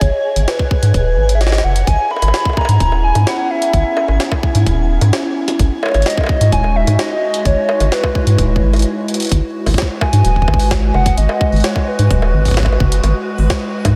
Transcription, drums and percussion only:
0.01 kick loud
0.01 closed hi-hat soft
0.36 closed hi-hat medium
0.48 snare loud
0.48 closed hi-hat medium
0.59 kick loud
0.71 kick loud
0.83 closed hi-hat medium
0.94 kick loud
0.94 closed hi-hat soft
1.29 closed hi-hat medium
1.41 snare soft
1.41 closed hi-hat soft
1.47 snare medium
1.52 snare medium
1.58 snare medium
1.76 closed hi-hat medium
1.87 kick loud
1.87 closed hi-hat soft
2.11 high bongo soft
2.16 high bongo soft
2.22 closed hi-hat medium
2.22 high bongo medium
2.28 high bongo medium
2.34 snare loud
2.34 closed hi-hat soft
2.45 kick loud
2.45 high bongo soft
2.49 high bongo soft
2.53 kick loud
2.53 high bongo soft
2.57 high bongo soft
2.61 high bongo medium
2.65 closed hi-hat medium
2.65 high bongo medium
2.80 kick loud
2.80 closed hi-hat soft
2.92 high bongo soft
3.15 closed hi-hat medium
3.15 high bongo soft
3.27 snare loud
3.27 closed hi-hat soft
3.62 closed hi-hat medium
3.73 kick loud
3.73 closed hi-hat soft
3.97 high bongo medium
4.08 high bongo medium
4.20 snare loud
4.20 closed hi-hat soft
4.32 kick loud
4.32 high bongo medium
4.43 kick loud
4.55 closed hi-hat medium
4.66 kick loud
4.66 closed hi-hat soft
5.01 closed hi-hat medium
5.01 high bongo medium
5.13 snare loud
5.13 closed hi-hat medium
5.48 closed hi-hat medium
5.48 high bongo medium
5.59 kick loud
5.59 closed hi-hat medium
5.83 high bongo medium
5.86 high bongo medium
5.89 high bongo soft
5.92 closed hi-hat soft
5.92 high bongo soft
5.94 high bongo medium
5.97 high bongo soft
6.00 closed hi-hat soft
6.00 high bongo soft
6.03 snare loud
6.03 closed hi-hat soft
6.03 high bongo soft
6.10 closed hi-hat soft
6.18 kick loud
6.18 high bongo soft
6.21 high bongo soft
6.24 high bongo medium
6.26 kick loud
6.26 high bongo medium
6.41 closed hi-hat medium
6.52 kick loud
6.52 closed hi-hat soft
6.64 high bongo soft
6.87 closed hi-hat medium
6.87 high bongo medium
6.99 snare loud
6.99 closed hi-hat soft
7.34 closed hi-hat medium
7.45 kick loud
7.45 closed hi-hat soft
7.69 high bongo medium
7.80 closed hi-hat medium
7.80 high bongo medium
7.92 snare loud
7.92 closed hi-hat soft
8.04 kick loud
8.04 high bongo medium
8.15 kick loud
8.27 closed hi-hat medium
8.38 kick loud
8.38 closed hi-hat medium
8.56 kick medium
8.73 closed hi-hat soft
8.73 high bongo medium
8.76 closed hi-hat soft
8.79 closed hi-hat soft
8.82 closed hi-hat medium
9.08 closed hi-hat medium
9.14 closed hi-hat medium
9.20 closed hi-hat medium
9.22 closed hi-hat medium
9.25 closed hi-hat soft
9.27 closed hi-hat soft
9.29 kick loud
9.29 closed hi-hat soft
9.32 closed hi-hat medium
9.66 kick soft
9.66 open hi-hat medium
9.66 high bongo medium
9.74 kick medium
9.74 snare loud
9.74 closed hi-hat medium
9.82 kick medium
10.01 kick loud
10.01 high bongo medium
10.13 closed hi-hat medium
10.25 closed hi-hat medium
10.36 kick soft
10.42 kick medium
10.48 kick medium
10.48 high bongo medium
10.54 kick medium
10.59 open hi-hat medium
10.71 kick loud
10.71 snare loud
10.71 closed hi-hat medium
10.94 high bongo medium
11.06 kick loud
11.06 closed hi-hat medium
11.18 closed hi-hat medium
11.29 high bongo medium
11.41 kick loud
11.52 open hi-hat soft
11.56 open hi-hat soft
11.60 snare loud
11.60 closed hi-hat medium
11.60 open hi-hat soft
11.76 kick loud
11.76 high bongo medium
11.99 closed hi-hat medium
12.11 kick loud
12.11 closed hi-hat medium
12.22 high bongo medium
12.45 kick medium
12.45 open hi-hat medium
12.48 kick medium
12.51 kick medium
12.54 kick medium
12.54 snare loud
12.54 closed hi-hat medium
12.54 high bongo medium
12.57 kick medium
12.60 kick medium
12.63 kick medium
12.63 high bongo medium
12.66 kick medium
12.72 high bongo soft
12.80 kick loud
12.92 closed hi-hat medium
13.04 closed hi-hat medium
13.04 high bongo medium
13.38 open hi-hat medium
13.50 kick loud
13.50 snare loud
13.50 closed hi-hat medium
13.50 high bongo soft
13.85 kick loud
13.85 closed hi-hat medium
13.85 high bongo medium

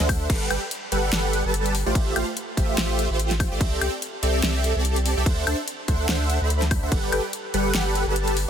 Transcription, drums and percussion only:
0.00 snare soft
0.00 closed hi-hat medium
0.09 kick loud
0.09 open hi-hat loud
0.09 high woodblock medium
0.30 kick loud
0.30 closed hi-hat medium
0.30 crash medium
0.30 crash soft
0.51 closed hi-hat medium
0.51 high woodblock medium
0.71 closed hi-hat medium
0.92 closed hi-hat medium
1.13 snare loud
1.13 closed hi-hat medium
1.13 crash soft
1.33 closed hi-hat medium
1.54 closed hi-hat medium
1.66 closed hi-hat medium
1.75 open hi-hat loud
1.95 kick loud
1.95 closed hi-hat medium
1.95 crash soft
2.16 closed hi-hat medium
2.16 high woodblock medium
2.37 closed hi-hat medium
2.57 kick medium
2.57 closed hi-hat medium
2.78 snare loud
2.78 closed hi-hat medium
2.78 crash soft
2.99 closed hi-hat medium
3.19 closed hi-hat medium
3.31 snare soft
3.31 closed hi-hat medium
3.40 kick loud
3.40 open hi-hat loud
3.40 high woodblock medium
3.61 kick loud
3.61 closed hi-hat medium
3.61 crash soft
3.81 closed hi-hat medium
3.81 high woodblock medium
4.02 closed hi-hat medium
4.23 closed hi-hat medium
4.43 snare loud
4.43 closed hi-hat medium
4.43 crash soft
4.64 closed hi-hat medium
4.85 closed hi-hat medium
4.96 closed hi-hat medium
5.06 open hi-hat loud
5.26 kick loud
5.26 closed hi-hat medium
5.26 crash soft
5.47 closed hi-hat medium
5.47 high woodblock medium
5.68 closed hi-hat medium
5.88 kick medium
5.88 closed hi-hat medium
6.09 snare loud
6.09 closed hi-hat medium
6.09 crash soft
6.30 closed hi-hat medium
6.50 closed hi-hat medium
6.62 snare soft
6.62 closed hi-hat medium
6.71 kick loud
6.71 open hi-hat medium
6.71 high woodblock medium
6.92 kick loud
6.92 closed hi-hat medium
6.92 crash soft
7.12 closed hi-hat medium
7.12 high woodblock medium
7.33 closed hi-hat medium
7.54 closed hi-hat medium
7.75 snare loud
7.75 closed hi-hat medium
7.75 crash soft
7.95 closed hi-hat medium
8.16 closed hi-hat medium
8.28 closed hi-hat medium
8.37 open hi-hat medium

